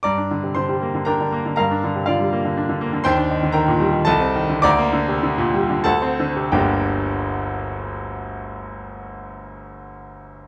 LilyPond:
<<
  \new Staff \with { instrumentName = "Grand piano" } { \time 3/4 \key g \minor \tempo 4 = 103 <d'' bes'' d'''>4 <c'' c'''>4 <bes' g'' bes''>4 | <bes' f'' bes''>4 <f' d'' f''>4. r8 | <c'' g'' c'''>4 <bes' g'' bes''>4 <a' ees'' a''>4 | <d'' bes'' d'''>2 <a' fis'' a''>4 |
<g,, d, g bes d' g' g''>2.~ | <g,, d, g bes d' g' g''>2. | }
  \new Staff \with { instrumentName = "Grand piano" } { \clef bass \time 3/4 \key g \minor g,16 d'16 d16 c16 d16 g16 bes16 d16 d'16 d16 bes16 d16 | g,16 d'16 d16 c16 d16 g16 bes16 d16 d'16 d16 bes16 d16 | ees,16 d'16 ees16 d16 ees16 bes,16 g16 ees16 c,16 c'16 ees16 d16 | d,16 bes16 d16 c16 d16 bes,16 g16 d16 d,16 c'16 d16 c16 |
r2. | r2. | }
>>